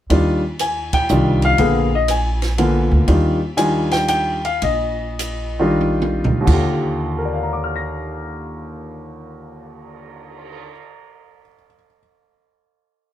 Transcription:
0.10 D#2 D#3 G3 D4 F4, kick, ride
0.59 G#5, hi-hat pedal, ride
0.93 G5, kick, ride
1.09 C2 D#3 G3 D4 F4, hi-hat pedal
1.42 F5, ride
1.58 A#1 D3 A#3 B3 G#4, kick, ride
1.95 D#5
2.08 G#5, hi-hat pedal, ride
2.42 snare, ride
2.58 D3 A#3 B3 F4, ride
2.91 D2
3.08 D#2 D#3 G3 D4 F4, kick, ride
3.57 D#3 G3 D4 F4 G#5, hi-hat pedal, ride
3.91 G5, snare, ride
4.08 G5, hi-hat pedal, ride
4.45 F5, ride
4.62 A#1 D#5, kick, ride
5.19 hi-hat pedal, ride
5.59 D#3 G3 D4 F4
5.81 high tom
6.02 high tom
6.24 D2, floor tom
6.41 D#2
6.45 D#2 D3 F4, kick, crash
6.53 G4
6.95 cymbal swell
7.18 A#4
7.25 D5
7.34 F5
7.43 A#5
7.53 D6
7.64 F6
7.76 A#6

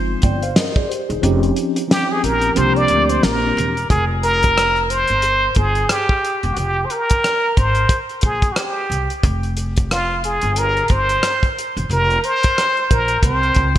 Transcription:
Already playing: G1 F3 G#3 C4 D#4 F4
0.22 G1 D5 G5, kick, closed hi-hat
0.43 C5 F5, closed hi-hat
0.56 A#4 D#5, snare, closed hi-hat
0.76 G#4 D5, kick
0.89 G4 C5, closed hi-hat
1.09 E1 D#4 G#4, closed hi-hat
1.21 F1 F3 C4 C#4 D#4 G4, closed hi-hat
1.43 closed hi-hat
1.56 closed hi-hat
1.76 closed hi-hat
1.88 F3 C4 C#4 D#4 G4, snare, closed hi-hat
2.11 G#4
2.23 A#1 A#4, closed hi-hat
2.41 closed hi-hat
2.55 C2 F3 A#3 C4 D4 G4 C5, closed hi-hat
2.76 D5, closed hi-hat
2.88 D2, closed hi-hat
3.09 C5, closed hi-hat
3.23 A#1 A#4, snare, closed hi-hat
3.57 E1, closed hi-hat
3.77 closed hi-hat
3.90 F1 G#4, kick, closed hi-hat
4.23 A#4, closed hi-hat
4.43 kick, closed hi-hat
4.58 cross-stick, closed hi-hat
4.76 closed hi-hat
4.90 C5, closed hi-hat
5.08 G1, closed hi-hat
5.22 closed hi-hat
5.55 G1 G#4, kick, closed hi-hat
5.75 closed hi-hat
5.89 G4, cross-stick, closed hi-hat
6.09 kick
6.25 closed hi-hat
6.43 E1, closed hi-hat
6.52 F#4
6.57 F1 G4, closed hi-hat
6.85 C5
6.90 A#4, closed hi-hat
7.10 kick, closed hi-hat
7.24 cross-stick, closed hi-hat
7.57 G#1 C5, kick, closed hi-hat
7.75 closed hi-hat
7.89 kick, closed hi-hat
8.09 closed hi-hat
8.21 A#1 G#4, kick, closed hi-hat
8.42 kick, closed hi-hat
8.52 F#4, cross-stick
8.56 G4, closed hi-hat
8.90 C2, closed hi-hat
9.10 closed hi-hat
9.23 F1, kick, closed hi-hat
9.43 closed hi-hat
9.57 closed hi-hat
9.77 kick, closed hi-hat
9.91 F4, cross-stick, closed hi-hat
10.24 G#4, closed hi-hat
10.41 G1, closed hi-hat
10.56 A#4, closed hi-hat
10.77 closed hi-hat
10.88 G1 C5, kick, closed hi-hat
11.09 closed hi-hat
11.23 cross-stick, closed hi-hat
11.43 kick, closed hi-hat
11.59 closed hi-hat
11.77 E1, closed hi-hat
11.89 F1 A#4, closed hi-hat
12.10 closed hi-hat
12.24 C5, closed hi-hat
12.43 kick, closed hi-hat
12.58 cross-stick, closed hi-hat
12.77 closed hi-hat
12.91 A#1 A#4, kick, closed hi-hat
13.08 closed hi-hat
13.23 C2 C4 C5, kick, closed hi-hat
13.43 closed hi-hat
13.55 C#2, kick, closed hi-hat

